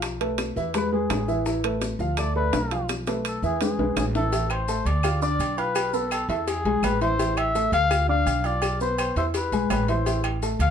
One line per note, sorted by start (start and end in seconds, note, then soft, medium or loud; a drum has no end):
0.00 0.51 B1 loud
0.00 0.14 F3 medium
0.00 0.15 F4 medium
0.00 0.15 F5 medium
0.00 high bongo medium
0.00 high timbale loud
0.00 claves medium
0.00 maracas medium
0.21 0.50 A3 medium
0.21 0.50 A4 medium
0.21 0.50 B4 medium
0.21 high bongo soft
0.21 high timbale medium
0.38 high bongo medium
0.38 high timbale medium
0.38 claves medium
0.38 maracas medium
0.56 1.06 E2 medium
0.56 0.71 E3 medium
0.56 0.71 E4 medium
0.56 0.72 E5 medium
0.56 high bongo soft
0.56 maracas soft
0.74 0.89 G#3 medium
0.74 0.89 G#4 medium
0.74 0.90 B4 medium
0.74 0.92 B4 medium
0.74 high bongo medium
0.74 high timbale medium
0.74 maracas medium
0.92 1.22 G#3 medium
0.92 1.22 G#4 medium
0.92 1.43 G#4 medium
0.92 1.22 B4 medium
1.10 1.94 A1 medium
1.10 high bongo medium
1.10 low bongo medium
1.10 high timbale medium
1.10 low timbale medium
1.10 claves medium
1.10 maracas medium
1.28 1.43 E3 loud
1.28 1.43 E4 medium
1.28 1.43 E5 medium
1.28 high bongo soft
1.28 maracas soft
1.46 1.61 E3 medium
1.46 1.61 E4 medium
1.46 1.61 E5 medium
1.46 high bongo medium
1.46 maracas medium
1.64 1.93 A3 medium
1.64 1.94 A4 medium
1.64 1.94 B4 medium
1.64 high bongo soft
1.64 high timbale medium
1.64 claves medium
1.81 high bongo medium
1.81 high timbale medium
1.81 maracas medium
1.99 2.49 D2 loud
1.99 2.15 F3 loud
1.99 2.15 F4 medium
1.99 2.15 F5 medium
1.99 maracas soft
2.17 2.32 A3 medium
2.17 2.33 A4 medium
2.17 2.33 D5 medium
2.17 2.35 D5 medium
2.17 high bongo medium
2.17 high timbale loud
2.17 claves medium
2.17 maracas medium
2.35 2.65 A3 medium
2.35 2.65 A4 medium
2.35 2.86 B4 medium
2.35 2.65 D5 medium
2.35 high bongo soft
2.53 3.37 B1 loud
2.53 high bongo medium
2.53 low bongo medium
2.53 high timbale medium
2.53 low timbale medium
2.53 maracas medium
2.71 3.01 F3 medium
2.71 3.01 F4 medium
2.71 3.01 F5 medium
2.71 high bongo soft
2.71 high timbale medium
2.71 maracas soft
2.89 high bongo medium
2.89 high timbale medium
2.89 claves medium
2.89 maracas medium
3.07 3.37 A3 medium
3.07 3.37 A4 medium
3.07 3.37 B4 medium
3.07 high bongo medium
3.07 high timbale medium
3.07 maracas medium
3.25 3.43 A4 medium
3.25 high timbale medium
3.25 claves medium
3.25 maracas medium
3.42 3.76 E2 loud
3.42 3.58 E3 medium
3.42 3.58 E4 medium
3.42 3.61 G#4 medium
3.42 3.58 E5 medium
3.42 maracas soft
3.61 3.76 G#3 medium
3.61 3.76 G#4 medium
3.61 3.95 G#4 medium
3.61 3.76 B4 medium
3.61 low bongo medium
3.61 high timbale medium
3.61 maracas medium
3.78 3.95 B1 medium
3.78 4.08 G#3 medium
3.78 4.08 G#4 medium
3.78 4.09 B4 medium
3.78 low bongo medium
3.96 4.80 A1 loud
3.96 4.05 G#4 medium
3.96 low bongo medium
3.96 high timbale loud
3.96 low timbale medium
3.96 claves medium
3.96 maracas medium
4.15 4.29 E3 medium
4.15 4.30 E4 medium
4.15 4.53 A4 medium
4.15 4.30 E5 medium
4.15 low bongo medium
4.15 maracas soft
4.32 4.62 E3 medium
4.32 4.62 E4 medium
4.32 4.62 E5 medium
4.32 cowbell loud
4.32 low agogo medium
4.32 maracas medium
4.50 4.88 C5 medium
4.50 cowbell medium
4.50 low agogo loud
4.50 claves medium
4.68 4.98 A3 medium
4.68 4.98 A4 medium
4.68 4.98 A5 medium
4.68 cowbell medium
4.68 maracas medium
4.85 5.36 D2 loud
4.85 5.22 D5 loud
4.85 cowbell medium
4.85 low agogo medium
4.85 maracas soft
5.03 5.19 F4 medium
5.03 5.19 F5 medium
5.03 5.19 F6 medium
5.03 cowbell loud
5.03 low agogo loud
5.03 claves medium
5.03 maracas medium
5.22 5.51 D4 medium
5.22 5.52 D5 medium
5.22 5.60 D5 loud
5.22 5.52 D6 medium
5.22 maracas medium
5.39 6.23 B1 loud
5.39 cowbell medium
5.39 low agogo medium
5.39 maracas medium
5.58 5.87 F4 medium
5.58 5.96 B4 loud
5.58 5.87 F5 medium
5.58 5.87 F6 medium
5.58 low agogo medium
5.58 maracas soft
5.75 cowbell loud
5.75 low agogo loud
5.75 claves medium
5.75 maracas medium
5.93 6.23 B3 medium
5.93 6.12 A4 medium
5.93 6.23 B4 medium
5.93 6.23 B5 medium
5.93 maracas medium
6.11 6.29 A4 loud
6.11 cowbell medium
6.11 low agogo loud
6.11 claves medium
6.11 maracas medium
6.29 6.62 E2 loud
6.29 6.59 E4 medium
6.29 6.49 A4 medium
6.29 6.59 E5 medium
6.29 6.59 E6 medium
6.29 cowbell medium
6.29 maracas soft
6.48 6.85 G#4 loud
6.48 cowbell loud
6.48 low agogo medium
6.48 maracas medium
6.65 6.82 B1 medium
6.65 6.95 G#3 medium
6.65 6.95 G#4 medium
6.65 6.95 G#5 medium
6.65 cowbell medium
6.82 7.67 A1 medium
6.82 7.01 B4 loud
6.82 cowbell medium
6.82 low timbale medium
6.82 low agogo loud
6.82 claves medium
6.82 maracas medium
7.01 7.16 E3 medium
7.01 7.16 E4 loud
7.01 7.39 C5 loud
7.01 7.16 E5 medium
7.01 cowbell medium
7.01 maracas soft
7.19 7.49 E3 medium
7.19 7.49 E4 medium
7.19 7.49 E5 medium
7.19 cowbell loud
7.19 low agogo medium
7.19 maracas medium
7.37 7.73 E5 loud
7.37 cowbell medium
7.37 low agogo loud
7.37 claves medium
7.55 7.84 A3 medium
7.55 7.85 A4 medium
7.55 7.85 A5 medium
7.55 cowbell medium
7.55 maracas medium
7.72 8.23 D2 loud
7.72 8.07 F5 loud
7.72 cowbell medium
7.72 low agogo medium
7.72 maracas soft
7.91 8.05 F4 medium
7.91 8.06 F5 medium
7.91 8.06 F6 medium
7.91 cowbell loud
7.91 low agogo loud
7.91 claves medium
7.91 maracas medium
8.09 8.38 D4 medium
8.09 8.38 D5 medium
8.09 8.47 F5 loud
8.09 8.39 D6 medium
8.26 9.10 B1 loud
8.26 cowbell medium
8.26 low agogo medium
8.26 maracas medium
8.44 8.74 F4 medium
8.44 8.81 D5 loud
8.44 8.74 F5 medium
8.44 8.75 F6 medium
8.44 low agogo medium
8.44 maracas soft
8.62 cowbell loud
8.62 low agogo loud
8.62 claves medium
8.62 maracas medium
8.80 9.10 B3 medium
8.80 9.10 B4 medium
8.80 8.98 C5 medium
8.80 9.11 B5 medium
8.80 maracas medium
8.98 9.16 C5 loud
8.98 cowbell medium
8.98 low agogo loud
8.98 claves medium
8.98 maracas medium
9.16 9.50 E2 loud
9.16 9.46 E4 medium
9.16 9.26 C5 medium
9.16 9.46 E5 medium
9.16 9.47 E6 medium
9.16 cowbell medium
9.16 maracas soft
9.34 9.69 B4 medium
9.34 cowbell loud
9.34 low agogo medium
9.34 maracas medium
9.52 9.69 B1 medium
9.52 9.82 G#3 medium
9.52 9.82 G#4 medium
9.52 9.82 G#5 medium
9.52 cowbell medium
9.52 maracas medium
9.70 10.54 A1 loud
9.70 9.88 B4 medium
9.70 cowbell medium
9.70 low timbale medium
9.70 low agogo loud
9.70 claves medium
9.70 maracas medium
9.88 10.03 E3 medium
9.88 10.03 E4 medium
9.88 10.23 C5 medium
9.88 10.04 E5 medium
9.88 cowbell medium
9.88 maracas soft
10.06 10.36 E3 medium
10.06 10.36 E4 medium
10.06 10.36 E5 medium
10.06 cowbell loud
10.06 low agogo medium
10.06 maracas medium
10.24 cowbell medium
10.24 low agogo loud
10.24 claves medium
10.42 10.70 A3 medium
10.42 10.70 A4 medium
10.42 10.70 A5 medium
10.42 cowbell medium
10.42 maracas medium
10.59 10.70 D2 loud
10.59 10.70 F5 loud
10.59 cowbell medium
10.59 low agogo medium
10.59 maracas soft